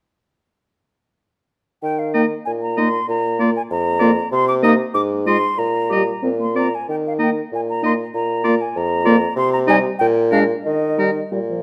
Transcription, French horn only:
2.14 2.25 A#3 medium
2.77 2.88 A#3 medium
3.39 3.50 A#3 medium
4.01 4.12 A#3 medium
4.63 4.74 A#3 medium
5.26 5.37 G#3 medium
5.91 6.02 G3 medium
6.22 6.30 C4 medium
6.39 6.47 A#3 soft
6.55 6.70 C4 medium
7.19 7.30 A#3 medium
7.83 7.94 A#3 medium
8.45 8.55 A#3 medium
9.06 9.17 A#3 medium
9.69 9.79 G3 medium
10.32 10.43 G#3 medium
10.98 11.10 G3 medium
11.32 11.39 G3 medium
11.50 11.63 F3 medium

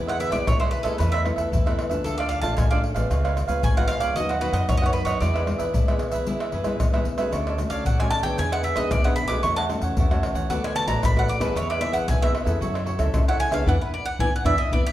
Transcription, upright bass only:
0.00 0.28 E2 loud
0.32 0.44 B1 loud
0.47 0.81 B1 medium
0.84 0.97 B1 medium
1.00 1.33 E2 loud
1.37 1.49 E2 medium
1.52 1.75 E2 medium
1.90 2.02 E2 medium
2.04 2.38 D2 loud
2.43 2.55 A1 medium
2.57 2.91 A1 medium
2.95 3.07 A1 medium
3.10 3.44 C#2 loud
3.48 3.60 C#2 medium
3.63 3.86 G#1 medium
4.00 4.13 D2 medium
4.15 4.49 D#2 medium
4.53 4.65 F#2 loud
4.69 5.02 F#2 loud
5.06 5.18 F#2 medium
5.21 5.55 E2 loud
5.60 5.72 E2 medium
5.75 5.97 B1 medium
6.12 6.47 E3 medium
6.53 6.77 F#2 medium
6.80 7.04 E2 medium
7.06 7.30 D2 medium
7.33 7.66 D2 loud
7.70 7.82 D2 medium
7.85 8.08 A1 loud
8.22 8.35 D3 medium
8.38 8.72 E2 loud
8.76 8.88 B1 medium
8.91 9.25 B1 medium
9.29 9.41 B1 medium
9.44 9.78 E2 medium
9.82 9.94 E2 medium
9.97 10.19 E2 medium
10.34 10.46 E3 medium
10.50 10.83 D2 medium
10.87 10.99 A1 medium
11.02 11.36 A1 loud
11.40 11.52 D#2 medium
11.56 11.89 E2 loud
11.93 12.05 E2 medium
12.08 12.30 B1 loud
12.46 12.58 E2 medium
12.61 12.95 F#2 medium
12.99 13.11 C#2 loud
13.14 13.47 C#2 loud
13.51 13.63 C#2 medium
13.67 13.76 E2 loud
14.19 14.29 E2 loud
14.44 14.55 E2 loud
14.71 14.82 E2 loud

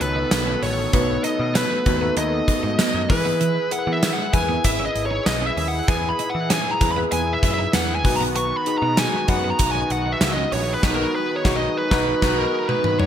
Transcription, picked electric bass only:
0.01 0.24 C#2 loud
0.32 0.55 B1 loud
0.63 0.86 A1 loud
0.94 1.17 B1 loud
1.40 1.63 B2 loud
1.86 2.09 D#2 medium
2.17 2.40 D#2 loud
2.48 muted picked electric bass stroke soft
2.64 2.75 G#2 medium
2.79 muted picked electric bass stroke soft
2.94 3.06 F#2 medium
3.10 3.56 E3 loud
3.87 4.10 E3 loud
4.34 4.57 E2 medium
4.65 4.88 G#1 loud
4.95 5.19 G#1 medium
5.26 5.49 B1 loud
5.57 5.80 D#2 loud
5.88 6.11 E2 loud
6.35 6.58 E3 loud
6.81 7.04 E2 loud
7.12 7.35 E2 loud
7.43 7.66 F#2 medium
7.74 8.05 E2 medium
8.05 8.51 B1 loud
8.82 9.05 B2 loud
9.29 9.52 F#2 medium
9.60 9.83 B1 loud
9.90 10.14 B1 medium
10.21 10.45 C#2 loud
10.52 10.75 A#1 loud
10.83 11.04 B1 loud
11.45 11.66 B1 loud
11.91 12.12 B1 loud
12.22 12.43 B1 loud

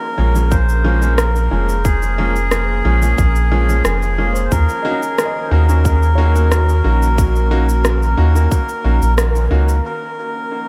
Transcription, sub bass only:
0.18 1.49 A#1 loud
1.52 2.82 F1 medium
2.85 3.14 A#1 loud
3.18 3.82 A#1 loud
3.85 4.49 F1 medium
4.52 4.67 D#2 loud
5.51 6.82 D#2 loud
6.85 8.15 A#1 medium
8.18 8.48 D#2 loud
8.85 9.00 A#1 loud
9.02 9.48 A#1 medium
9.51 9.81 C#2 medium

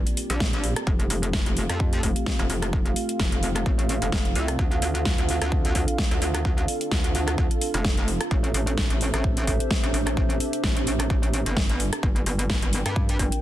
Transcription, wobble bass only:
0.30 0.74 A#1 medium
0.87 1.08 F1 loud
1.10 1.44 F1 loud
1.46 1.67 F1 loud
1.70 2.02 F2 loud
2.03 2.14 F1 loud
2.39 2.48 F1 loud
2.50 2.95 F1 loud
3.20 3.64 F1 medium
3.66 4.00 A1 medium
4.02 4.11 F1 medium
4.12 4.34 F1 loud
4.36 4.57 C2 loud
4.59 4.81 D2 loud
4.82 5.16 D2 loud
5.18 5.40 D2 loud
5.42 5.74 D2 medium
5.75 5.86 D2 loud
6.11 6.20 D2 loud
6.22 6.67 D2 loud
6.92 7.36 D2 medium
7.38 7.49 D2 medium
7.74 8.19 F1 medium
8.31 8.53 A1 loud
8.54 8.88 A1 loud
8.90 9.12 A1 loud
9.14 9.46 A1 loud
9.47 9.58 A1 loud
9.83 9.92 A1 loud
9.94 10.39 A1 loud
10.64 11.08 A1 medium
11.10 11.44 A1 loud
11.46 11.91 G1 loud
12.03 12.25 G1 loud
12.26 12.60 G1 loud
12.62 12.84 G1 loud
12.86 13.18 G2 loud
13.19 13.30 G1 loud

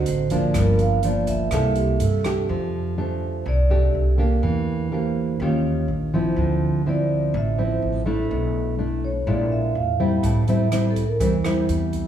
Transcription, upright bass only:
0.07 0.52 A1 medium
0.55 1.48 G1 medium
1.52 1.97 C2 loud
2.01 2.46 G2 medium
2.49 3.42 F2 medium
3.46 3.91 C2 loud
3.95 4.39 C2 medium
4.43 5.36 E2 medium
5.40 5.85 D#2 loud
5.88 6.33 A#1 medium
6.36 7.29 D2 medium
7.34 7.79 A1 loud
7.82 8.27 A1 medium
8.31 9.23 B1 medium
9.27 9.72 A#1 loud
9.75 10.20 F2 medium
10.23 11.16 A1 medium
11.20 11.66 E2 loud
11.69 12.07 E2 medium

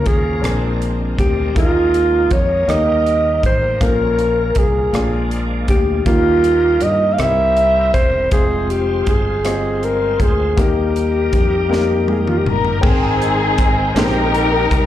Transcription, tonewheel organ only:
0.00 0.44 F3 soft
0.00 0.44 A#3 soft
0.00 0.44 C#4 soft
0.00 0.43 A#4 medium
0.44 1.55 G#3 medium
0.44 1.57 C4 soft
0.44 1.57 D4 soft
0.44 1.56 A#4 medium
1.56 2.69 G#3 soft
1.56 2.68 A#3 soft
1.56 2.68 D#4 soft
1.56 2.69 A#4 medium
2.69 3.81 G3 soft
2.69 3.79 A#3 soft
2.69 3.81 D#4 soft
2.69 2.75 G#4 soft
2.75 3.80 A#4 medium
3.80 4.91 F3 soft
3.80 4.91 A#3 soft
3.80 4.93 C#4 soft
3.80 4.94 A#4 soft
4.91 6.06 F3 soft
4.91 6.05 A#3 soft
4.91 6.06 D4 soft
4.91 4.99 G4 soft
4.99 6.09 G#3 medium
6.05 7.17 G3 soft
6.05 7.19 A#3 soft
6.05 7.19 D#4 soft
6.05 7.17 A#4 medium
7.18 8.31 G3 medium
7.18 8.31 C4 soft
7.18 8.31 E4 soft
7.18 8.31 A#4 medium
8.31 8.39 G3 soft
8.31 10.54 C4 soft
8.31 10.53 F4 soft
8.31 10.54 C5 medium
8.38 10.56 G#3 medium
10.57 12.79 G3 soft
10.57 12.79 A#3 soft
10.57 12.79 D#4 soft
10.57 10.64 A4 soft
10.64 12.82 A#4 medium
12.83 14.86 G#3 medium
12.83 14.86 C4 soft
12.83 14.86 A#4 medium
12.83 14.86 G5 soft

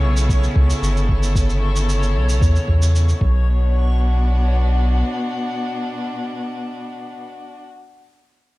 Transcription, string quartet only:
0.00 3.22 C#3 medium
0.00 3.21 B3 medium
0.00 3.21 E4 medium
0.00 3.21 A4 medium
3.21 7.18 B2 medium
3.29 7.26 B3 medium
3.63 7.60 D4 medium
3.72 7.68 F#4 medium

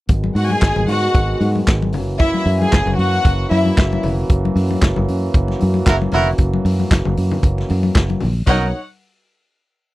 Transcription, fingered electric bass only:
0.09 0.29 G#1 medium
0.35 0.55 G#2 loud
0.62 0.73 G#1 medium
0.76 0.85 G#1 medium
0.88 1.07 G#2 medium
1.15 1.34 G#1 medium
1.41 1.60 G#2 loud
1.68 1.93 G#1 medium
1.93 2.32 F#1 medium
2.46 2.65 F#2 loud
2.73 2.84 F#1 medium
2.86 2.95 F#1 medium
2.98 3.18 F#2 medium
3.25 3.44 F#1 loud
3.51 3.70 F#2 loud
3.78 3.97 F#1 medium
4.04 4.23 F1 medium
4.30 4.49 F#1 medium
4.56 4.75 F#2 loud
4.82 4.93 F#1 medium
4.97 5.05 F#1 loud
5.09 5.28 F#2 medium
5.34 5.54 F#1 medium
5.62 5.81 F#2 loud
5.86 6.06 F#1 medium
6.13 6.32 F1 medium
6.39 6.58 F#1 medium
6.65 6.84 F#2 loud
6.91 7.02 F#1 medium
7.06 7.14 F#1 medium
7.18 7.37 F#2 loud
7.44 7.63 F#1 medium
7.70 7.89 F#2 loud
7.95 8.14 F#1 medium
8.23 8.42 A#1 medium
8.47 8.71 B1 medium

